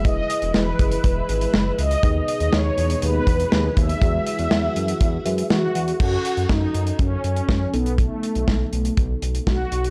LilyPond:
<<
  \new Staff \with { instrumentName = "Tine electric piano" } { \time 4/4 \key e \major \tempo 4 = 121 <e' gis' b' dis''>1 | <dis' gis' b' dis''>1 | <fis' gis' b' e''>2~ <fis' gis' b' e''>8 <fis' gis' b' e''>4. | <cis' fis' a'>2.~ <cis' fis' a'>8 <b dis' a'>8~ |
<b dis' a'>2.~ <b dis' a'>8 r8 | }
  \new Staff \with { instrumentName = "Analog polysynth" } { \time 4/4 \key e \major dis''4 b'2~ b'8 dis''8~ | dis''8 dis''8 cis''4 b'4. e''8~ | e''2. fis'4 | fis'4 dis'4 cis'8 cis'4 b8 |
a2 r4 fis'4 | }
  \new Staff \with { instrumentName = "String machine" } { \clef bass \time 4/4 \key e \major << { <e e'>1 | <b, dis'>1 | <e fis'>1 | r1 |
r1 | } \\ { gis1 | gis1~ | gis1 | r1 |
r1 | } >> }
  \new Staff \with { instrumentName = "Analog synth bass" } { \clef bass \time 4/4 \key e \major e,,8 r16 e,,16 e,,8 fis,,8 e,,8 gis,,8 fis,,8 cis,8 | dis,8 r16 dis,16 dis,8 e,8 dis,8 e,8 dis,8 dis,8 | e,8 r16 e,16 e,8 fis,8 e,8 fis,8 e,8 e,8 | fis,8 r16 fis,16 fis,8 fis,8 fis,8 fis,8 fis,8 b,,8~ |
b,,8 r16 b,,16 b,,8 b,,8 b,,8 b,,8 b,,8 b,,8 | }
  \new DrumStaff \with { instrumentName = "Drums" } \drummode { \time 4/4 <hh bd>8 hh16 hh16 sn8 <hh bd>16 hh16 <hh bd>8 hh16 hh16 sn8 hh16 hh16 | <hh bd>8 hh16 hh16 sn8 hh16 hh16 hh8 <hh bd>16 hh16 sn8 <hh bd>16 hh16 | <hh bd>8 hh16 hh16 sn8 hh16 hh16 <hh bd>8 hh16 hh16 sn8 hh16 hh16 | <cymc bd>8 hh16 hh16 <bd sn>8 hh16 hh16 <hh bd>8 hh16 hh16 <bd sn>8 hh16 hh16 |
<hh bd>8 hh16 hh16 <bd sn>8 hh16 hh16 <hh bd>8 hh16 hh16 <bd sn>8 hh16 hh16 | }
>>